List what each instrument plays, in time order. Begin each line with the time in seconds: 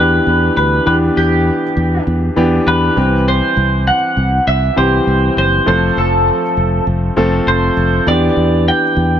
Already playing: fingered electric bass E2, grand piano E3 B3 D4 G4, clean electric guitar B4
0.27 fingered electric bass E2
0.57 fingered electric bass D2, clean electric guitar B4
0.86 fingered electric bass E2, grand piano E3 B3 D4 G4, clean electric guitar B4
1.17 fingered electric bass E2, clean electric guitar G4
1.77 fingered electric bass E2
2.07 fingered electric bass E2
2.36 fingered electric bass E2, grand piano E3 B3 D4 G4
2.67 fingered electric bass E2, clean electric guitar B4
2.96 fingered electric bass C2, grand piano E3 G3 C4 G4
3.28 clean electric guitar C5
3.57 fingered electric bass C2
3.88 clean electric guitar F#5
4.17 fingered electric bass C2
4.47 fingered electric bass C2, clean electric guitar E5
4.76 fingered electric bass C2, grand piano E3 G3 C4 G4, clean electric guitar C5
5.07 fingered electric bass C2
5.37 fingered electric bass F#1, clean electric guitar C5
5.66 fingered electric bass F1, grand piano F3 A3 C4 A4, clean electric guitar C5
5.97 fingered electric bass F1, clean electric guitar A4
6.57 fingered electric bass F1
6.87 fingered electric bass F1
7.17 fingered electric bass F1, grand piano F3 A3 C4 A4
7.47 fingered electric bass F1, clean electric guitar C5
7.77 fingered electric bass F1
8.07 fingered electric bass E2, grand piano E3 B3 D4 G4, clean electric guitar D5
8.36 fingered electric bass E2
8.68 clean electric guitar G5
8.96 fingered electric bass E2